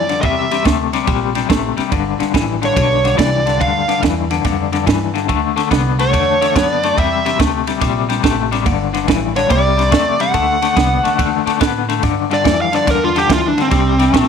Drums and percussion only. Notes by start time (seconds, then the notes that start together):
0.09 snare, ride
0.23 kick, ride
0.51 snare, ride
0.65 kick, snare, ride
0.93 snare, ride
1.07 kick, ride
1.35 snare, ride
1.50 kick, snare, ride
1.78 snare, ride
1.92 kick, ride
2.20 snare, ride
2.34 kick, snare, ride
2.63 snare, ride
2.76 kick, ride
3.05 snare, ride
3.19 kick, snare, ride
3.47 snare, ride
3.61 kick, ride
3.89 snare, ride
4.03 kick, snare, ride
4.31 snare, ride
4.45 kick, snare, ride
4.73 snare, ride
4.87 kick, snare, ride
5.15 snare, ride
5.29 kick, ride
5.57 snare, ride
5.71 kick, snare, ride
5.99 snare, ride
6.14 kick, ride
6.42 snare, ride
6.56 kick, snare, ride
6.83 snare, ride
6.98 kick, ride
7.26 snare, ride
7.40 kick, snare, ride
7.67 snare, ride
7.81 kick, snare, ride
8.10 snare, ride
8.24 kick, snare, ride
8.52 snare, ride
8.66 kick, ride
8.94 snare, ride
9.08 kick, snare, ride
9.36 snare, ride
9.50 kick, ride
9.79 snare, ride
9.92 kick, snare, ride
10.20 snare, ride
10.34 kick, ride
10.62 snare, ride
10.77 kick, snare, ride
11.05 snare, ride
11.19 kick, ride
11.47 snare, ride
11.61 kick, snare, ride
11.89 snare, ride
12.03 kick, snare, ride
12.31 snare, ride
12.45 kick, snare, ride
12.73 snare, ride
12.87 kick, snare, ride
13.16 snare, ride
13.30 kick, snare, ride
13.58 snare, ride
13.71 kick, snare, ride
13.99 snare, ride
14.14 kick, snare, ride